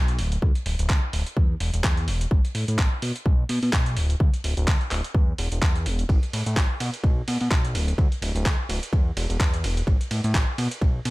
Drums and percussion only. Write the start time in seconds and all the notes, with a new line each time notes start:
0.08 closed hi-hat
0.19 open hi-hat
0.32 closed hi-hat
0.42 kick
0.55 closed hi-hat
0.66 open hi-hat
0.79 closed hi-hat
0.89 kick, clap
1.13 open hi-hat
1.26 closed hi-hat
1.37 kick
1.60 open hi-hat
1.74 closed hi-hat
1.84 kick, clap
1.97 closed hi-hat
2.08 open hi-hat
2.21 closed hi-hat
2.31 kick
2.45 closed hi-hat
2.55 open hi-hat
2.68 closed hi-hat
2.78 kick, clap
3.02 open hi-hat
3.16 closed hi-hat
3.26 kick
3.49 open hi-hat
3.63 open hi-hat
3.73 kick, clap
3.86 closed hi-hat
3.97 open hi-hat
4.10 closed hi-hat
4.20 kick
4.34 closed hi-hat
4.44 open hi-hat
4.57 closed hi-hat
4.67 kick, clap
4.81 closed hi-hat
4.91 clap, open hi-hat
5.04 closed hi-hat
5.15 kick
5.38 open hi-hat
5.52 closed hi-hat
5.62 kick, clap
5.76 closed hi-hat
5.86 open hi-hat
5.99 closed hi-hat
6.09 kick, ride
6.23 closed hi-hat
6.33 open hi-hat, ride
6.46 closed hi-hat
6.56 kick, clap, ride
6.80 open hi-hat, ride
6.94 closed hi-hat
7.04 kick, ride
7.28 open hi-hat, ride
7.41 open hi-hat
7.51 kick, clap, ride
7.65 closed hi-hat
7.75 open hi-hat, ride
7.88 closed hi-hat
7.98 kick, ride
8.12 closed hi-hat
8.22 open hi-hat, ride
8.36 closed hi-hat
8.45 kick, clap, ride
8.70 open hi-hat, ride
8.83 closed hi-hat
8.93 kick, ride
9.17 open hi-hat, ride
9.30 closed hi-hat
9.40 kick, clap
9.54 closed hi-hat
9.64 open hi-hat, ride
9.77 closed hi-hat
9.87 kick, ride
10.01 closed hi-hat
10.11 open hi-hat, ride
10.24 closed hi-hat
10.34 kick, clap, ride
10.58 open hi-hat, ride
10.71 closed hi-hat
10.82 kick, ride
11.05 open hi-hat, ride